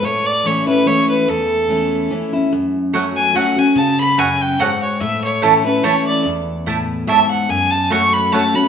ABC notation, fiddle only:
X:1
M:3/4
L:1/8
Q:"Swing" 1/4=145
K:A
V:1 name="Fiddle"
c d c B c B | A4 z2 | z3 g f g | a b g =g f c |
e c A B c d | z4 e f | g a c' b a b |]